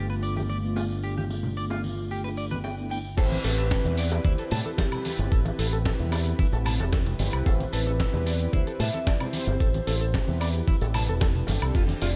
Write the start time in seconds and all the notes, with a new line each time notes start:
Already playing: G1 A3 B3 D4 F4 A4
0.10 B4, tambourine
0.22 D5, tambourine
0.36 G4, tambourine, high bongo, high conga
0.49 D5, tambourine
0.62 A3 B3 D4 F4, tambourine
0.76 F4, tambourine, high bongo
0.90 tambourine
1.03 G4, tambourine
1.17 G4, tambourine, high conga
1.30 tambourine, high bongo
1.43 tambourine, low conga
1.56 A3 B3 D4 F4 D5, tambourine
1.70 F4, tambourine, high bongo
1.84 tambourine, high conga
1.97 tambourine
2.11 G4, tambourine
2.24 B4, tambourine, high bongo
2.37 D5, tambourine
2.50 B4, tambourine, high conga
2.64 G5, tambourine, high bongo
2.78 A3 B3 D4 E4, tambourine
2.90 A3 B3 D4 E4 G5, tambourine
3.05 tambourine
3.17 A1 C4 E4 G4 A4 B4 C5, kick, closed hi-hat, crash, tambourine, high bongo, cabasa
3.31 closed hi-hat, tambourine, high conga
3.44 A1 A4 B4, open hi-hat, tambourine, high bongo, cabasa
3.58 A4, closed hi-hat, tambourine, cabasa
3.70 C4 E4 G4 A4 B4, kick, snare, closed hi-hat, tambourine, cabasa
3.84 E2, closed hi-hat, tambourine, high bongo, high conga, low conga
3.97 D5, open hi-hat, tambourine, cabasa
4.12 closed hi-hat, tambourine, high bongo, cabasa
4.24 D2 C4 E4 G4 B4 C5, kick, closed hi-hat, tambourine, high conga, cabasa
4.38 A4, closed hi-hat, tambourine
4.51 A2 A4 A5, open hi-hat, tambourine, high bongo, low conga, cabasa
4.65 A4, closed hi-hat, tambourine, high conga, cabasa
4.78 G4 A4, kick, snare, closed hi-hat, tambourine, high bongo, cabasa
4.91 C4 E4 G4 B4, closed hi-hat, tambourine, low conga, high woodblock
5.05 A4, open hi-hat, tambourine, high conga, cabasa
5.19 G1, closed hi-hat, tambourine, high bongo, cabasa
5.32 A1 A4, kick, closed hi-hat, tambourine, cabasa
5.45 closed hi-hat, tambourine, high bongo, high conga
5.59 A1 A4, open hi-hat, tambourine, cabasa
5.73 A4, closed hi-hat, tambourine, cabasa
5.84 C4 E4 G4 A4 B4, kick, snare, closed hi-hat, tambourine, high bongo, cabasa
5.99 E2, closed hi-hat, tambourine, high conga, low conga
6.12 D5, open hi-hat, tambourine, high bongo, cabasa, high woodblock
6.26 closed hi-hat, tambourine, cabasa
6.39 E4, kick, closed hi-hat, tambourine, high conga, cabasa
6.52 A1 A4, closed hi-hat, tambourine, high bongo
6.65 A5, open hi-hat, tambourine, low conga, cabasa, high woodblock
6.79 E1 A4, closed hi-hat, tambourine, high bongo, high conga, cabasa
6.92 A4, kick, snare, closed hi-hat, tambourine, cabasa
7.06 closed hi-hat, tambourine, low conga
7.18 G1 C4 E4 G4 B4, open hi-hat, tambourine, high bongo, high conga, cabasa
7.33 C2, closed hi-hat, tambourine, cabasa, high woodblock
7.46 A1 A4 C5, kick, closed hi-hat, tambourine, high bongo, cabasa
7.60 closed hi-hat, tambourine, high conga
7.72 A1 A4 B4, open hi-hat, tambourine, cabasa
7.87 A4, closed hi-hat, tambourine, high bongo, cabasa
7.99 C4 E4 G4 A4 B4, kick, snare, closed hi-hat, tambourine, cabasa
8.13 E2, closed hi-hat, tambourine, high bongo, high conga, low conga
8.26 D5, open hi-hat, tambourine, cabasa
8.40 closed hi-hat, tambourine, cabasa
8.52 D2 C4 E4 G4 B4 C5, kick, closed hi-hat, tambourine, high bongo, high conga, cabasa
8.67 A4, closed hi-hat, tambourine
8.80 A2 E5 A5, open hi-hat, tambourine, high bongo, low conga, cabasa
8.94 A4, closed hi-hat, tambourine, high conga, cabasa
9.06 A4 D5, kick, snare, closed hi-hat, tambourine, cabasa
9.19 C4 E4 G4 C5, closed hi-hat, tambourine, high bongo, low conga, high woodblock
9.33 C5, open hi-hat, tambourine, high conga, cabasa
9.47 G1, closed hi-hat, tambourine, high bongo, cabasa
9.60 A1 A4, kick, closed hi-hat, tambourine, cabasa
9.74 closed hi-hat, tambourine, high conga
9.87 A1 A4, open hi-hat, tambourine, high bongo, cabasa
10.01 A4, closed hi-hat, tambourine, cabasa
10.13 C4 E4 G4 A4 B4, kick, snare, closed hi-hat, tambourine, high bongo, cabasa
10.28 E2, closed hi-hat, tambourine, high conga, low conga
10.41 D5, open hi-hat, tambourine, cabasa, high woodblock
10.54 closed hi-hat, tambourine, high bongo, cabasa
10.68 E4, kick, closed hi-hat, tambourine, high conga, cabasa
10.81 A1 A4, closed hi-hat, tambourine, high bongo
10.94 A5, open hi-hat, tambourine, low conga, cabasa, high woodblock
11.08 E1 A4, closed hi-hat, tambourine, high conga, cabasa
11.21 A4, kick, snare, closed hi-hat, tambourine, high bongo, cabasa
11.35 closed hi-hat, tambourine, low conga
11.47 G1 C4 D4 G4 A4, open hi-hat, tambourine, high bongo, high conga, cabasa
11.62 C2, closed hi-hat, tambourine, cabasa, high woodblock
11.74 F1 F4, kick, closed hi-hat, ride, tambourine, high bongo, cabasa
11.88 closed hi-hat, tambourine, high conga
12.01 F1 F4 D5, open hi-hat, tambourine, high bongo, cabasa